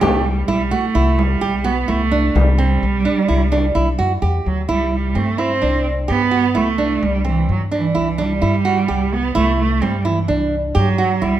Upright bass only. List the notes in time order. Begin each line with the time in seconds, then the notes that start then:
0.02 C2
0.49 B1
0.95 C2
1.42 B1
1.89 C2
2.35 C2
2.83 B1
3.29 C2
3.76 B1
3.99 F#2
4.23 E2
4.46 D2
4.69 C2
5.16 G2
5.63 C2
6.10 G2
6.56 C2
7.03 C2
7.49 G2
7.96 C2
8.42 G2
8.89 C2
9.36 C2
9.83 G2
10.29 C2
10.76 G2
11.22 C2